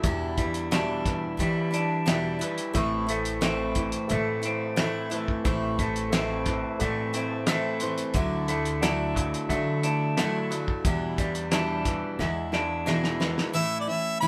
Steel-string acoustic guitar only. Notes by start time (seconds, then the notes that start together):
0.04 E2 B2 E3 G3 D4 E4
0.38 E3 G3 D4 E4
0.71 E2 B2 E3 G3 D4 E4
1.37 E3 G3 D4 E4
1.71 E3 G3 D4 E4
2.06 E2 B2 E3 G3 D4 E4
2.39 E3 G3 D4 E4
2.74 A2 E3 A3 C4 E4
3.07 A3 C4 E4
3.41 A2 E3 A3 C4 E4
4.09 E3 A3 C4 E4
4.42 A3 C4 E4
4.76 A2 E3 A3 C4 E4
5.10 A3 C4 E4
5.45 A2 E3 A3 C4 E4
5.78 A3 C4 E4
6.12 A2 E3 A3 C4 E4
6.80 E3 A3 C4 E4
7.13 A3 C4 E4
7.48 A2 E3 A3 C4 E4
7.81 A3 C4 E4
8.16 D3 F#3 A3 D4 E4
8.49 A3 D4 E4
8.82 D3 F#3 A3 D4 E4
9.50 F#3 A3 D4 E4
9.85 A3 D4 E4
10.19 D3 F#3 A3 D4 E4
10.51 A3 D4 E4
10.86 E2 B2 E3 G3 D4 E4
11.19 E3 G3 D4 E4
11.53 E2 B2 E3 G3 D4 E4
12.19 E3 G#3 D4 E4
12.52 E3 G#3 D4 E4
12.86 E2 B2 E3 G#3 D4 E4
13.20 E3 G#3 D4 E4
13.53 A2 E3 A3 C#4 E4
13.87 A3 C#4 E4
14.22 A2 E3 A3 C#4 E4